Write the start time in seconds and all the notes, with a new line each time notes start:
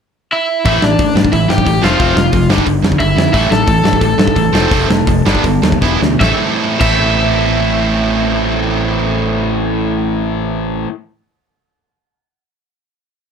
0.32 E4 E5
0.65 A1 A2 E3 A3 E4 E5, kick, open hi-hat
0.82 A1 A2 E3 D4 D5, snare
0.99 A1 A2 E3, kick, open hi-hat
1.15 G2 A2 E3, snare
1.25 kick
1.32 A1 A2 E3 E4 E5, kick, open hi-hat
1.49 G2 A2 E3 G4 G5, snare
1.58 kick
1.65 A1 A2 E3, kick, open hi-hat
1.81 F1 F2 C3 F3 A3 C4 F4 F5, snare
1.99 F1 F2 C3 F3 A3 C4, kick, open hi-hat
2.15 F1 F2 C3 F3 A3, snare
2.32 F1 F2 C3 F3 A3, kick, open hi-hat
2.49 G1 G2 D3 G3, snare
2.58 kick
2.67 G1 G2 D3, kick, open hi-hat
2.83 F2 G2 D3, snare
2.92 kick
3.00 G1 G2 D3 E4 E5, kick, open hi-hat
3.16 F2 G2 D3, snare
3.33 A1 A2 E3 A3 E4 E5, kick, open hi-hat
3.50 A1 A2 E3 A4 A5, snare
3.66 A1 A2 E3, kick, open hi-hat
3.83 G2 A2 E3, snare
3.93 kick
4.01 A1 A2 E3, kick, open hi-hat
4.18 G2 A2 E3, snare
4.27 kick
4.35 A1 A2 E3, kick, open hi-hat
4.53 F1 F2 C3 F3 A3 C4, snare
4.71 F1 F2 C3 F3 A3 C4, kick, open hi-hat
4.88 F1 F2 C3 F3 A3, snare
5.07 F1 F2 C3 F3 A3, kick, open hi-hat
5.25 G1 G2 D3 G3 B3 D4, snare
5.35 kick
5.44 G1 G2 D3 G3 B3, kick, open hi-hat
5.62 D#2 G2 D3 G3 B3, snare
5.72 kick
5.81 E1 E2 B2 E3 B3 E4, kick, snare
6.01 D2 E2 B2 E3 B3, snare
6.19 A1 A2 E3 A3 C4 E4 E5, kick, snare
6.23 A4
6.79 A1 A2 E3 A3 C4 E4 A4 E5, kick, crash